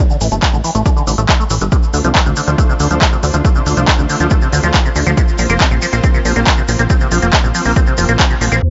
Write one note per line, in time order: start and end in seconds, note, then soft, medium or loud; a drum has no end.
0.10 0.17 D3 medium
0.10 shaker soft
0.21 0.29 A1 medium
0.21 0.28 E3 medium
0.21 open hi-hat loud
0.21 shaker medium
0.32 0.40 G1 medium
0.32 0.36 A3 loud
0.32 closed hi-hat medium
0.32 shaker soft
0.42 0.45 D4 loud
0.42 kick loud
0.42 clap loud
0.42 closed hi-hat medium
0.42 shaker medium
0.53 0.62 A1 medium
0.53 0.58 D3 medium
0.53 shaker soft
0.64 0.71 E3 loud
0.64 open hi-hat loud
0.64 shaker medium
0.75 0.83 A1 medium
0.75 0.82 A3 loud
0.75 closed hi-hat medium
0.75 shaker soft
0.86 0.90 D4 medium
0.86 kick loud
0.86 closed hi-hat medium
0.86 shaker medium
0.97 1.03 D3 medium
0.97 shaker soft
1.07 1.16 A1 medium
1.07 1.12 D3 loud
1.07 open hi-hat loud
1.07 shaker medium
1.18 1.26 A1 medium
1.18 1.21 A3 loud
1.18 closed hi-hat medium
1.18 shaker soft
1.29 1.33 D3 medium
1.29 kick loud
1.29 clap loud
1.29 closed hi-hat medium
1.29 shaker soft
1.40 1.44 A3 medium
1.40 shaker soft
1.50 1.59 A1 loud
1.50 1.55 E3 medium
1.50 open hi-hat loud
1.50 shaker loud
1.61 1.70 G1 medium
1.61 1.64 D3 medium
1.61 closed hi-hat medium
1.61 shaker soft
1.72 1.76 C3 medium
1.72 kick loud
1.72 closed hi-hat medium
1.72 shaker medium
1.83 shaker soft
1.94 2.02 D2 medium
1.94 1.98 D3 medium
1.94 open hi-hat loud
1.94 shaker medium
2.04 2.13 C2 medium
2.04 2.09 F3 loud
2.04 closed hi-hat medium
2.04 shaker soft
2.15 2.22 A3 medium
2.15 kick loud
2.15 clap loud
2.15 closed hi-hat medium
2.15 shaker medium
2.26 2.34 D2 medium
2.26 2.30 C3 loud
2.26 shaker soft
2.36 2.41 D3 loud
2.36 open hi-hat loud
2.36 shaker medium
2.48 2.56 D2 medium
2.48 2.50 F3 medium
2.48 closed hi-hat medium
2.48 shaker soft
2.58 2.63 A3 medium
2.58 kick loud
2.58 closed hi-hat medium
2.58 shaker medium
2.69 2.74 C3 loud
2.69 shaker soft
2.80 2.88 D2 medium
2.80 2.87 D3 medium
2.80 open hi-hat loud
2.80 shaker medium
2.91 2.99 D2 medium
2.91 2.95 F3 loud
2.91 closed hi-hat medium
2.91 shaker soft
3.01 3.04 A3 medium
3.01 kick loud
3.01 clap loud
3.01 closed hi-hat medium
3.01 shaker soft
3.12 3.17 C3 medium
3.12 shaker soft
3.23 3.32 D2 loud
3.23 3.26 D3 medium
3.23 open hi-hat loud
3.23 shaker medium
3.33 3.42 D2 medium
3.33 3.37 F3 medium
3.33 closed hi-hat medium
3.33 shaker soft
3.45 3.49 A3 medium
3.45 kick loud
3.45 closed hi-hat medium
3.45 shaker medium
3.56 3.62 C3 medium
3.56 shaker soft
3.66 3.75 D2 medium
3.66 3.73 D3 medium
3.66 open hi-hat loud
3.66 shaker medium
3.77 3.85 C2 medium
3.77 3.82 F3 loud
3.77 closed hi-hat medium
3.77 shaker soft
3.88 3.91 A3 loud
3.88 kick loud
3.88 clap loud
3.88 closed hi-hat medium
3.88 shaker medium
3.99 4.07 D2 medium
3.99 4.03 C3 medium
3.99 shaker soft
4.09 4.16 D3 loud
4.09 open hi-hat loud
4.09 shaker medium
4.20 4.29 D2 medium
4.20 4.27 F3 loud
4.20 closed hi-hat medium
4.20 shaker soft
4.30 4.36 A3 loud
4.30 kick loud
4.30 closed hi-hat medium
4.30 shaker soft
4.42 4.49 C3 medium
4.42 shaker soft
4.52 4.61 D2 medium
4.52 4.59 D3 medium
4.52 open hi-hat loud
4.52 shaker medium
4.63 4.72 D2 medium
4.63 4.68 F3 loud
4.63 closed hi-hat medium
4.63 shaker soft
4.74 4.77 A3 loud
4.74 kick loud
4.74 clap loud
4.74 closed hi-hat medium
4.74 shaker medium
4.85 4.89 C3 medium
4.85 shaker soft
4.96 5.04 D2 medium
4.96 5.00 D3 medium
4.96 open hi-hat loud
4.96 shaker medium
5.06 5.15 D2 medium
5.06 5.11 F3 loud
5.06 closed hi-hat medium
5.06 shaker soft
5.17 5.22 C3 medium
5.17 kick loud
5.17 closed hi-hat medium
5.17 shaker medium
5.28 shaker soft
5.38 5.47 A#1 medium
5.38 5.43 F3 medium
5.38 open hi-hat loud
5.38 shaker medium
5.49 5.58 F1 medium
5.49 5.54 A#3 loud
5.49 closed hi-hat medium
5.49 shaker soft
5.59 5.67 C4 medium
5.59 kick loud
5.59 clap loud
5.59 closed hi-hat medium
5.59 shaker soft
5.71 5.80 A#1 medium
5.71 5.76 C3 loud
5.71 shaker soft
5.82 5.87 F3 loud
5.82 open hi-hat loud
5.82 shaker medium
5.93 6.01 A#1 medium
5.93 5.96 A#3 medium
5.93 closed hi-hat medium
5.93 shaker soft
6.04 6.08 C4 medium
6.04 kick loud
6.04 closed hi-hat medium
6.04 shaker medium
6.14 6.19 C3 loud
6.14 shaker soft
6.25 6.34 A#1 medium
6.25 6.32 F3 medium
6.25 open hi-hat loud
6.25 shaker medium
6.36 6.44 A#1 medium
6.36 6.40 A#3 loud
6.36 closed hi-hat medium
6.36 shaker soft
6.46 6.49 C4 medium
6.46 kick loud
6.46 clap loud
6.46 closed hi-hat medium
6.46 shaker soft
6.57 6.62 C3 medium
6.57 shaker soft
6.68 6.77 A#1 loud
6.68 6.71 F3 medium
6.68 open hi-hat loud
6.68 shaker medium
6.79 6.88 A#1 medium
6.79 6.82 A#3 medium
6.79 closed hi-hat medium
6.79 shaker soft
6.90 6.94 C4 medium
6.90 kick loud
6.90 closed hi-hat medium
6.90 shaker medium
7.00 7.07 C3 medium
7.00 shaker soft
7.11 7.20 A#1 medium
7.11 7.18 F3 medium
7.11 open hi-hat loud
7.11 shaker medium
7.22 7.31 F1 medium
7.22 7.27 A#3 loud
7.22 closed hi-hat medium
7.22 shaker soft
7.33 7.36 C4 loud
7.33 kick loud
7.33 clap loud
7.33 closed hi-hat medium
7.33 shaker soft
7.44 7.52 A#1 medium
7.44 7.48 C3 medium
7.44 shaker soft
7.55 7.61 F3 loud
7.55 open hi-hat loud
7.55 shaker medium
7.64 7.74 A#1 medium
7.64 7.72 A#3 loud
7.64 open hi-hat medium
7.64 shaker soft
7.76 7.81 C4 loud
7.76 kick loud
7.76 closed hi-hat medium
7.76 shaker medium
7.87 7.94 C3 medium
7.87 shaker soft
7.98 8.06 F1 medium
7.98 8.05 F3 medium
7.98 open hi-hat loud
7.98 shaker medium
8.08 8.17 A#1 medium
8.08 8.13 A#3 loud
8.08 closed hi-hat medium
8.08 shaker soft
8.19 8.22 C4 loud
8.19 kick loud
8.19 clap loud
8.19 closed hi-hat medium
8.19 shaker soft
8.30 8.35 C3 medium
8.30 shaker soft
8.41 8.50 A#1 loud
8.41 8.45 F3 medium
8.41 open hi-hat loud
8.41 shaker medium
8.52 8.60 A#1 medium
8.52 8.56 A#3 loud
8.52 closed hi-hat medium
8.52 shaker soft
8.63 8.70 C5 medium
8.63 sub drop medium